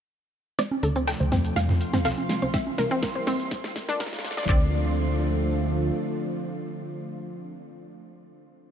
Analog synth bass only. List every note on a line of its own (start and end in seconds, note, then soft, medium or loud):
0.83 1.15 D2 loud
1.20 1.51 D2 medium
1.56 1.88 F2 medium
2.05 2.14 C2 medium
2.42 2.73 C2 medium
2.78 3.10 C2 loud
3.15 3.46 C2 medium
3.51 3.83 A#1 medium
4.00 4.10 F1 medium
4.37 4.46 A#1 loud
4.49 5.91 D2 loud